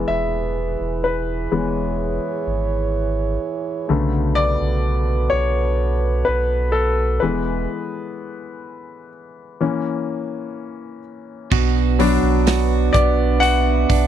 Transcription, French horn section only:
Already playing: E3 E4 G#4 B4
1.51 C#5
3.89 B3 F#4 A4 B4
7.22 E3 E4 G#4 B4
11.52 B3 D4 F#4 B4
13.43 E5

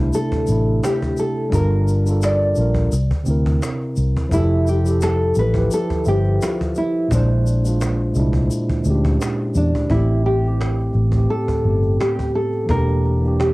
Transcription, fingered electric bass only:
0.32 muted fingered electric bass stroke
0.49 A1
1.53 G1
2.58 A#1
2.93 C2
3.11 muted fingered electric bass stroke
3.27 D2
3.97 C2
4.32 F1
5.37 A1
5.91 muted fingered electric bass stroke
6.07 G1
7.11 A#1
8.16 C2
8.69 muted fingered electric bass stroke
8.86 D2
9.55 E2
9.90 A1
10.95 A1
11.48 muted fingered electric bass stroke
11.65 G1
12.69 E1

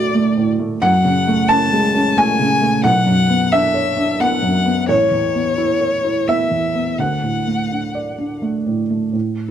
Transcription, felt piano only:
Already playing: D2 A2 A3 F#4 A4 D5 E5
0.14 A3
0.37 A2
0.59 A3
0.82 F#2 F#5
1.05 C#3
1.27 A3
1.49 C#4 A5
1.72 G#3
1.95 C#4
2.17 A3 G#5
2.39 C#3
2.62 A3
2.84 B1 F#5
3.06 F#2
3.29 B3
3.52 D4 E5
3.74 C#5
3.97 D4
4.20 B3 F#5
4.42 F#2
4.66 B3
4.89 A1 C#5
5.11 E2
5.35 B3
5.58 E4
5.81 C#5
6.04 E4
6.28 B3 E5
6.51 E2
6.75 B3
6.99 D2 F#5
7.23 A2
7.47 A3
7.71 D4
7.95 D5
8.18 D4
8.42 A3
8.67 A2
8.90 A3
9.13 A2

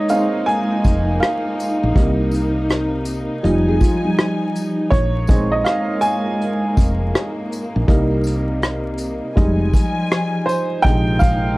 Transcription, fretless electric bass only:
0.85 F1
1.83 A#1
1.96 C2
3.44 F1
4.92 A#1
6.78 F1
7.76 A#1
7.88 C2
9.37 F1
10.85 A#1

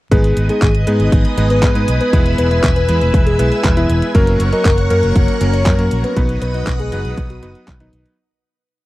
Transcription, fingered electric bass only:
0.11 G#1
0.37 G#1
0.62 G#1
0.87 G#2
1.00 G#1
1.12 G#1
1.38 G#1
1.63 G#2
1.88 B1
2.13 E1
2.38 E1
2.63 E1
2.89 E2
3.01 E1
3.14 E1
3.39 B1
3.64 E1
3.90 E1
4.15 F#1
4.40 F#1
4.65 F#1
4.91 F#2
5.03 F#1
5.16 F#1
5.41 F#1
5.66 F#2
5.91 A#1
6.17 B1
6.42 B1
6.67 B1
6.92 F#1
7.05 B1
7.17 B1
7.43 F#1
7.68 B1
7.93 B1

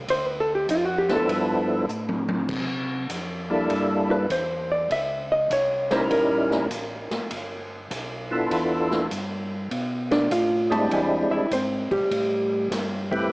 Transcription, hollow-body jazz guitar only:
0.10 C5
0.27 B4
0.40 A4
0.55 G4
0.71 F4
0.85 F#4
0.98 G4
1.16 A4
1.31 B4
4.11 B4
4.32 C5
4.72 D5
4.92 E5
5.32 D#5
5.53 C#5
5.92 C5
6.12 A#4
10.12 D4 D5
10.32 F4 F5
10.71 A3 A5
10.93 G#3 G#5
11.31 E4 E5
11.53 C4 C5
11.92 G3 G4

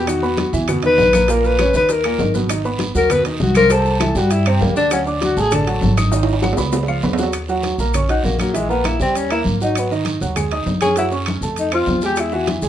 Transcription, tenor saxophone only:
Already playing: G4
0.09 F#4
0.86 B4
1.30 A#4
1.45 B4
1.76 B4
1.91 A#4
2.97 A#4
3.12 B4
3.26 D#4
3.42 F#4
3.56 A#4
3.72 A4
4.17 F#4
4.32 E4
4.48 C4
4.62 A#3
4.76 D4
4.93 C#4
5.24 F#4
5.39 G#4
5.54 A4
8.09 D#4
8.25 A#3
8.40 F#3
8.56 G#3
8.70 B3
8.86 E4
9.02 C4
9.17 C#4
9.31 E4
9.63 D#4
9.79 B3
10.81 G#4
10.98 E4
11.59 D#4
11.74 F4
12.05 G4
12.20 E4
12.34 F#4

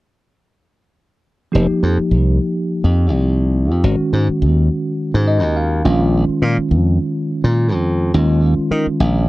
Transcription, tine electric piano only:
1.52 F3 A#3 D#4 G4
3.84 D#3 G#3 C#4 F#4
5.28 D#5
5.57 F5
5.85 D#3 G#3 C#4 F4
8.14 D#3 G#3 C#4 F4

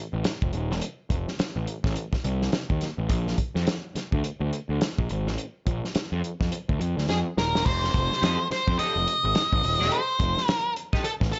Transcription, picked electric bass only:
0.13 A1
0.42 F1
0.53 D#1
0.71 E1
1.10 F1
1.39 muted picked electric bass stroke
1.56 A1
1.84 A1
2.13 muted picked electric bass stroke
2.25 C2
2.53 muted picked electric bass stroke
2.70 D#2
2.98 A1
3.09 A#1
3.55 F2
3.95 muted picked electric bass stroke
4.12 D2
4.40 D2
4.69 D2
4.98 A#1
5.10 G#1
5.27 A1
5.66 A#1
5.95 muted picked electric bass stroke
6.12 F2
6.41 F2
6.69 D2
6.81 F2
6.97 D2
7.08 F2
7.37 D#1
7.54 E1
7.66 F1
7.94 F1
8.22 F2
8.50 muted picked electric bass stroke
8.67 F2
8.79 muted picked electric bass stroke
8.96 F1
9.24 G#1
9.53 A1
9.63 D#1
9.80 E1
10.20 F1
11.21 A1

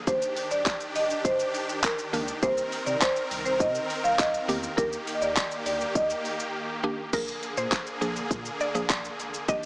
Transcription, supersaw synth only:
0.07 D#3 D4 G4
2.43 C4 A#4
4.78 A#3 G4
7.14 D3 A#3 G#4
9.49 D#3 D4 G4

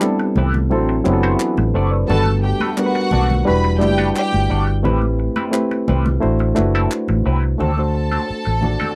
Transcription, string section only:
2.09 A4 A5
2.44 G4 G5
2.78 F#4 F#5
3.48 B4 B5
3.80 G4 G5
4.15 G4 G5
7.61 A4 A5

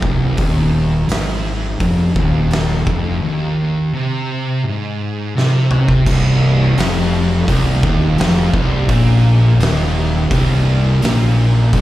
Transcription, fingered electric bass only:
0.03 C1
0.38 D#1
1.09 G#1
1.80 F1
2.16 D#1
2.87 F1
6.06 C1
6.78 F1
7.48 C1
7.83 D#1
8.19 F1
8.53 C1
8.89 A#1
9.60 D#1
10.31 C1
11.03 A#1
11.73 C1

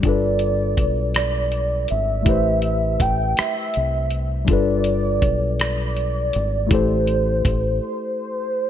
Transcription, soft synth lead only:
0.04 D5
1.17 D5
1.91 E5
3.01 G5
3.40 E5
4.51 D5
5.62 D5
6.73 C5
7.83 C5

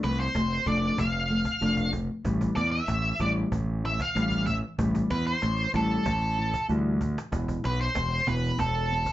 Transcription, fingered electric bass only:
0.04 C2
0.35 F1
0.66 F1
0.99 F1
1.62 F1
2.25 A1
2.57 E2
2.88 A1
3.20 A1
3.52 A1
4.16 A1
4.79 A1
5.11 E2
5.43 A1
5.74 A1
6.06 A1
6.69 D2
7.33 E1
7.65 B1
7.97 E1
8.28 E1
8.59 E1

